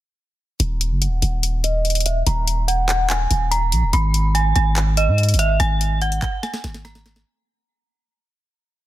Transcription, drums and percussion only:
0.60 closed hi-hat
0.81 closed hi-hat
1.02 closed hi-hat
1.22 closed hi-hat
1.43 closed hi-hat
1.64 closed hi-hat
1.85 closed hi-hat
1.90 closed hi-hat
1.95 closed hi-hat
2.00 closed hi-hat
2.06 closed hi-hat
2.27 closed hi-hat
2.48 closed hi-hat
2.68 closed hi-hat
2.89 clap, closed hi-hat
3.10 clap, closed hi-hat
3.31 closed hi-hat
3.52 closed hi-hat
3.72 closed hi-hat
3.93 closed hi-hat
4.14 closed hi-hat
4.35 closed hi-hat
4.56 closed hi-hat
4.76 clap, closed hi-hat
4.97 closed hi-hat
5.18 closed hi-hat
5.23 closed hi-hat
5.29 closed hi-hat
5.34 closed hi-hat
5.39 closed hi-hat
5.60 closed hi-hat
5.81 closed hi-hat
6.02 closed hi-hat
6.12 closed hi-hat
6.22 kick, clap, closed hi-hat
6.43 snare, closed hi-hat
6.54 snare
6.64 snare, closed hi-hat
6.74 snare, closed hi-hat
6.85 snare, closed hi-hat
6.95 snare
7.06 snare, closed hi-hat
7.16 snare

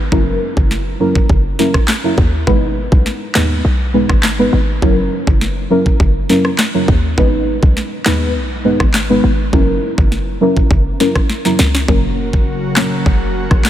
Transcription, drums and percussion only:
0.12 kick
0.57 kick
0.71 snare
1.15 kick
1.30 kick
1.59 snare
1.74 kick, cross-stick
1.88 snare, clap
2.18 kick
2.47 kick
2.92 kick
3.06 snare
3.35 snare, clap
4.09 kick, cross-stick
4.23 snare, clap
4.82 kick
5.27 kick
5.41 snare
5.86 kick
6.00 kick
6.29 snare
6.45 cross-stick
6.59 snare, clap
6.88 kick
7.18 kick
7.63 kick
7.77 snare
8.06 snare, clap
8.80 kick, cross-stick
8.94 snare, clap
9.53 kick
9.98 kick
10.12 snare
10.57 kick
10.71 kick
11.00 snare
11.15 kick, cross-stick
11.30 snare
11.45 snare
11.59 snare
11.75 snare
11.88 kick
12.33 kick
12.76 snare, clap
13.06 kick
13.51 kick, cross-stick
13.65 snare, clap

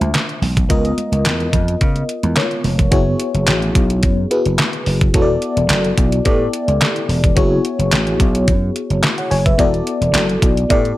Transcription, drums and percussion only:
0.01 closed hi-hat, high conga
0.14 snare, clap, closed hi-hat, muted conga
0.29 closed hi-hat
0.42 open hi-hat, high conga, low conga
0.57 kick, closed hi-hat, low conga
0.70 kick, closed hi-hat
0.85 closed hi-hat, muted conga
0.98 closed hi-hat, high conga
1.12 closed hi-hat, high conga
1.25 snare, clap, closed hi-hat, muted conga
1.40 closed hi-hat, high conga
1.53 kick, closed hi-hat, low conga
1.68 closed hi-hat
1.81 kick, closed hi-hat
1.96 closed hi-hat, muted conga
2.09 closed hi-hat
2.23 closed hi-hat, high conga
2.36 snare, clap, closed hi-hat
2.51 closed hi-hat
2.64 open hi-hat, high conga, low conga
2.79 kick, closed hi-hat, low conga
2.92 kick, closed hi-hat
3.20 closed hi-hat
3.35 closed hi-hat
3.47 snare, clap, closed hi-hat
3.62 closed hi-hat
3.75 kick, closed hi-hat
3.90 closed hi-hat
4.03 kick, closed hi-hat
4.31 closed hi-hat
4.46 closed hi-hat
4.58 snare, clap, closed hi-hat
4.73 closed hi-hat
4.86 open hi-hat
5.01 kick, closed hi-hat
5.14 kick, closed hi-hat
5.42 closed hi-hat
5.57 closed hi-hat
5.70 snare, clap, closed hi-hat
5.85 closed hi-hat
5.98 kick, closed hi-hat
6.12 closed hi-hat
6.25 kick, closed hi-hat
6.53 closed hi-hat
6.68 closed hi-hat
6.81 snare, clap, closed hi-hat
6.96 closed hi-hat
7.09 open hi-hat
7.24 kick, closed hi-hat
7.37 kick, closed hi-hat
7.65 closed hi-hat
7.80 closed hi-hat
7.92 snare, clap, closed hi-hat
8.07 closed hi-hat
8.20 kick, closed hi-hat
8.35 closed hi-hat
8.48 kick, closed hi-hat
8.76 closed hi-hat
8.90 closed hi-hat
9.03 snare, clap, closed hi-hat
9.18 closed hi-hat
9.31 open hi-hat
9.46 kick, closed hi-hat
9.59 kick, closed hi-hat
9.74 closed hi-hat
9.87 closed hi-hat
10.02 closed hi-hat
10.14 snare, clap, closed hi-hat
10.29 closed hi-hat
10.42 kick, closed hi-hat
10.57 closed hi-hat
10.70 kick, closed hi-hat
10.85 closed hi-hat

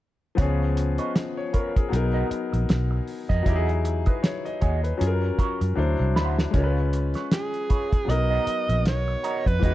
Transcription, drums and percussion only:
0.38 kick, closed hi-hat
0.77 closed hi-hat
0.98 closed hi-hat
1.16 snare, closed hi-hat
1.54 kick, closed hi-hat
1.76 kick, closed hi-hat
1.93 closed hi-hat
2.31 closed hi-hat
2.54 closed hi-hat
2.69 snare, closed hi-hat
3.07 open hi-hat
3.30 kick, closed hi-hat
3.46 kick, closed hi-hat
3.69 closed hi-hat
3.85 closed hi-hat
4.06 kick, closed hi-hat
4.24 snare, closed hi-hat
4.46 closed hi-hat
4.62 kick, closed hi-hat
4.84 closed hi-hat
5.01 closed hi-hat
5.39 kick, closed hi-hat
5.61 closed hi-hat
6.16 snare
6.39 snare
6.54 kick, closed hi-hat
6.93 closed hi-hat
7.14 snare, closed hi-hat
7.32 snare, closed hi-hat
7.54 closed hi-hat
7.70 kick, closed hi-hat
7.93 kick, closed hi-hat
8.10 closed hi-hat
8.47 closed hi-hat
8.69 closed hi-hat
8.86 snare, closed hi-hat
9.24 closed hi-hat
9.46 kick, closed hi-hat
9.63 kick, closed hi-hat

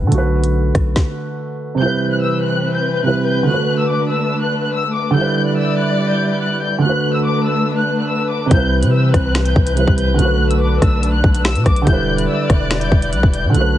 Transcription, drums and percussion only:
0.12 closed hi-hat
0.44 closed hi-hat
0.75 kick, cross-stick, closed hi-hat
0.96 kick, snare
8.51 kick, closed hi-hat
8.83 closed hi-hat
9.14 kick, cross-stick, closed hi-hat
9.35 finger snap, snare, closed hi-hat
9.46 closed hi-hat
9.56 kick
9.67 closed hi-hat
9.77 closed hi-hat
9.88 kick
9.98 closed hi-hat
10.19 closed hi-hat
10.51 closed hi-hat
10.82 kick, cross-stick, closed hi-hat
11.03 closed hi-hat
11.24 kick
11.35 closed hi-hat
11.45 finger snap, snare
11.55 closed hi-hat
11.66 kick, cross-stick, closed hi-hat
11.76 closed hi-hat
11.87 kick, closed hi-hat
12.18 closed hi-hat
12.50 kick, cross-stick, closed hi-hat
12.71 finger snap, snare, closed hi-hat
12.81 closed hi-hat
12.92 kick
13.02 closed hi-hat
13.13 closed hi-hat
13.23 kick
13.34 closed hi-hat
13.55 closed hi-hat

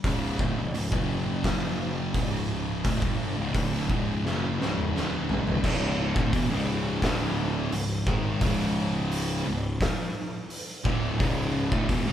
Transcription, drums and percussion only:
0.04 kick, open hi-hat
0.39 kick
0.75 open hi-hat
0.92 kick
1.44 kick, snare, open hi-hat
2.14 kick, open hi-hat
2.84 kick, open hi-hat
3.02 kick
3.54 kick, open hi-hat
3.73 snare
3.90 kick
4.26 snare
4.62 snare
4.77 mid tom
4.96 snare
5.29 floor tom
5.47 floor tom
5.64 kick, crash
6.16 kick
6.33 kick, open hi-hat
7.02 kick, snare, open hi-hat
7.72 open hi-hat
8.07 kick
8.41 kick, open hi-hat
9.12 open hi-hat
9.81 kick, snare, open hi-hat
10.50 open hi-hat
10.85 kick
11.20 kick, open hi-hat
11.72 kick
11.89 kick, open hi-hat

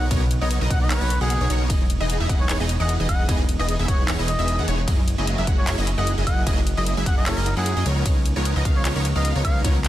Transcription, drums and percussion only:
0.11 kick, closed hi-hat, ride
0.31 closed hi-hat
0.51 closed hi-hat
0.70 kick, closed hi-hat
0.90 clap, closed hi-hat, ride, high woodblock
1.10 closed hi-hat
1.30 closed hi-hat
1.50 closed hi-hat
1.70 kick, closed hi-hat, ride
1.90 closed hi-hat
2.10 closed hi-hat
2.29 kick, closed hi-hat
2.49 clap, closed hi-hat, ride
2.69 closed hi-hat
2.89 closed hi-hat
3.09 kick, closed hi-hat, high woodblock
3.29 kick, closed hi-hat, ride
3.49 closed hi-hat
3.69 closed hi-hat
3.88 kick, closed hi-hat
4.08 clap, closed hi-hat, ride, high woodblock
4.28 closed hi-hat
4.48 closed hi-hat
4.68 closed hi-hat
4.88 kick, closed hi-hat, ride
5.08 closed hi-hat
5.27 closed hi-hat
5.47 kick, closed hi-hat
5.67 clap, closed hi-hat, ride
5.87 closed hi-hat
6.07 closed hi-hat
6.27 kick, closed hi-hat, high woodblock
6.47 kick, closed hi-hat, ride
6.67 closed hi-hat
6.87 closed hi-hat
7.06 kick, closed hi-hat
7.26 clap, closed hi-hat, ride, high woodblock
7.46 closed hi-hat
7.66 closed hi-hat
7.86 closed hi-hat
8.06 kick, closed hi-hat, ride
8.26 closed hi-hat
8.45 closed hi-hat
8.65 kick, closed hi-hat
8.85 clap, closed hi-hat, ride
9.05 closed hi-hat
9.25 closed hi-hat
9.45 kick, closed hi-hat, high woodblock
9.64 kick, closed hi-hat, ride
9.84 clap, closed hi-hat

